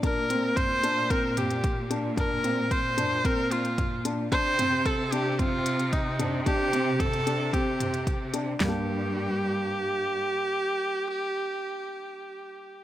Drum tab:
HH |x-x-x-x-x-xxx-x-|x-x-x-x-x-xxx-x-|x-x-x-x-x-xxx-x-|x-x-xxx-x-xxx-x-|
SD |----------------|----------------|----------------|----------------|
T2 |----o-----o-----|o-----o-----o---|--o-----o-----o-|----o-----o-----|
FT |----------------|----------------|----------------|----------------|
BD |o---o---o---o---|o---o---o---o---|o---o---o---o---|o---o---o---o---|

HH |o---------------|----------------|
SD |o---------------|----------------|
T2 |----------------|----------------|
FT |o---------------|----------------|
BD |----------------|----------------|